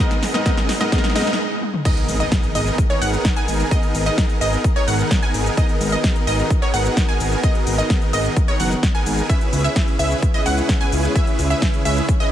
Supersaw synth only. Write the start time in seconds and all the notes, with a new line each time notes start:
0.00 B3 D#4 G#4 A#4 D#5
0.34 B3 D#4 G#4 A#4 D#5
0.46 B3 D#4
0.81 B3 D#4 G#4 A#4 D#5
0.92 B3 D#4 G#4 A#4
1.16 B3 D#4 G#4 A#4 D#5
1.85 B3 D#4 G#4 A#4 D#5
2.20 B3 D#4 G#4 A#4 D#5
2.55 B3 D#4 G#4 A#4 D#5
2.90 B3 D#4 G#4 A#4 C#5
3.02 B3 D#4 G#4 A#4 F#5
3.36 B3 D#4 G#4 A#4 G#5
3.71 B3 D#4 G#4 A#4 D#5
4.06 B3 D#4 G#4 A#4 D#5
4.41 B3 D#4 G#4 A#4 D#5
4.76 B3 D#4 G#4 A#4 C#5
4.88 B3 D#4 G#4 A#4 F#5
5.23 B3 D#4 G#4 A#4 G#5
5.57 B3 D#4 G#4 A#4
5.92 B3 D#4 G#4 A#4 D#5
6.27 B3 D#4 G#4 A#4 D#5
6.62 B3 D#4 G#4 A#4 C#5
6.74 B3 D#4 G#4 A#4 F#5
7.09 B3 D#4 G#4 A#4 G#5
7.44 B3 D#4 G#4 D#5
7.78 B3 D#4 G#4 A#4 D#5
8.13 B3 D#4 G#4 A#4 D#5
8.48 B3 D#4 G#4 A#4 C#5
8.60 B3 D#4 G#4 A#4 F#5
8.95 B3 D#4 G#4 A#4 G#5
9.30 C#4 E4 G#4 E5
9.64 C#4 E4 G#4 B4 E5
9.99 C#4 E4 G#4 B4 E5
10.34 C#4 E4 G#4 B4 D#5
10.46 C#4 E4 G#4 B4 F#5
10.81 C#4 E4 G#4 B4 G#5
11.16 C#4 E4 G#4 B4 E5
11.50 C#4 E4 G#4 B4 E5
11.85 C#4 E4 G#4 B4 E5
12.20 C#4 E4 G#4 B4 D#5